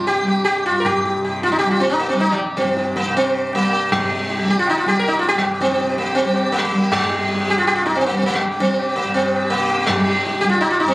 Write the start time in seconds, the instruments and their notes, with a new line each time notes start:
Already playing: tanpura G2 C3 G3
0.07 sitar G4, tabla tin
0.21 tanpura G3
0.27 sitar G4, tabla na
0.45 sitar G4, tabla na
0.66 tanpura G2, sitar F4, tabla na
0.80 sitar A#4
0.85 sitar G4, tabla na, tabla ge
1.05 sitar G4, tabla te
1.16 tanpura C3
1.25 sitar G4, tabla te
1.34 tabla te
1.43 sitar F4, tabla ke
1.52 sitar D#4, tabla te
1.59 sitar G4, tabla na
1.63 tanpura G3
1.71 sitar F4
1.80 sitar C4, tabla ke
1.90 sitar D#4, tabla te
1.99 sitar A#3, tabla na
2.09 tanpura G3, sitar C4
2.20 sitar D#4, tabla ke
2.31 sitar F3 G3
2.39 tabla na
2.57 tanpura G2, sitar C4 G4, tabla ke
2.68 tabla te
2.77 sitar G4, tabla te
2.86 tabla te
2.96 sitar A#3 G4, tabla ke
3.05 tanpura C3, tabla te
3.15 sitar C4, tabla tin
3.34 tabla na
3.53 tanpura G3, sitar A#3 G4, tabla na
3.73 tabla na
3.90 tanpura C3, sitar G3, tabla na, tabla ge
4.03 sitar G4
4.11 tabla te
4.30 sitar G4, tabla te
4.38 tanpura G3, sitar G4, tabla te
4.48 sitar G4, tabla ke
4.57 sitar F4, tabla te
4.67 sitar D#4, tabla na
4.78 sitar F4
4.84 tanpura G3, tabla ke
4.88 sitar G4
4.95 tabla te
4.99 sitar A#4
5.04 sitar D#4, tabla na
5.19 sitar F4
5.23 tabla ke
5.28 tanpura G2, sitar G4
5.38 sitar G3
5.42 tabla na
5.46 sitar G4
5.54 sitar G4
5.61 sitar C4, tabla ke
5.71 sitar G4, tabla te
5.78 tanpura C3, sitar G4, tabla te
5.89 sitar G4, tabla te
5.98 sitar A#3, tabla ke
6.06 sitar G4, tabla te
6.15 sitar C4, tabla tin
6.24 tanpura G3, sitar G4
6.34 sitar G4, tabla na
6.43 sitar G4
6.52 sitar A#3, tabla na
6.58 sitar G3
6.64 sitar A#3
6.71 tanpura G3, tabla na
6.82 sitar G4
6.92 sitar G3, tabla na, tabla ge
7.00 sitar G4
7.10 sitar G4, tabla te
7.19 tanpura G2, sitar G4
7.29 tabla te
7.39 sitar G4, tabla te
7.48 sitar G4, tabla ke
7.58 sitar F4, tabla te
7.65 tanpura C3, sitar G4, tabla na
7.75 sitar F4
7.86 sitar D#4, tabla ke
7.95 sitar C4 D#4, tabla te
8.01 sitar C4, tabla na
8.06 sitar A#3
8.11 tanpura G3
8.17 sitar C4
8.23 sitar A#3, tabla ke
8.35 sitar G3
8.41 tabla na
8.51 sitar G4
8.57 tanpura G3, sitar C4, tabla ke
8.70 tabla te
8.79 sitar G4, tabla na
8.89 sitar G4
8.96 sitar A#3, tabla ke
9.03 tanpura G2
9.07 sitar G4
9.14 sitar C4, tabla tin
9.25 sitar G4
9.35 sitar G4, tabla na
9.45 sitar G4
9.49 tanpura C3, sitar A#3, tabla na
9.62 sitar G4
9.71 sitar G4, tabla na
9.80 sitar G4
9.86 sitar G3, tabla na, tabla ge
9.94 tanpura G3
9.99 sitar G4
10.08 sitar G4, tabla te
10.19 sitar G4
10.25 sitar G4, tabla te
10.35 tabla te
10.40 tanpura G3, sitar G4, tabla ke
10.49 sitar F4
10.54 tabla te
10.61 sitar D#4, tabla na
10.70 sitar F4
10.80 tanpura G2, sitar D#4, tabla te
10.88 sitar C4